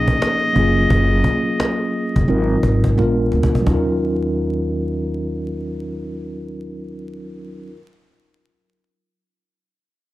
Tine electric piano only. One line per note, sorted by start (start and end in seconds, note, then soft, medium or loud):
0.00 0.55 F3 medium
0.00 0.53 A#3 medium
0.00 0.54 C#4 medium
0.00 0.56 D#4 medium
0.00 0.57 G#4 medium
0.52 2.23 F#3 medium
0.52 2.24 A#3 medium
0.52 2.25 C#4 medium
0.57 2.26 F4 medium
0.57 2.27 G#4 medium
2.27 2.97 F#3 medium
2.27 2.97 C4 medium
2.27 2.98 D#4 medium
2.27 2.98 F4 medium
2.27 2.98 A#4 medium
2.96 3.66 G#3 medium
2.96 3.66 B3 medium
2.96 3.67 D4 medium
2.96 3.67 F4 medium
2.96 3.67 A#4 medium
3.61 7.67 F#3 medium
3.61 7.70 C#4 medium
3.68 7.74 D#4 medium
3.68 7.77 F4 medium
3.74 7.80 A#4 medium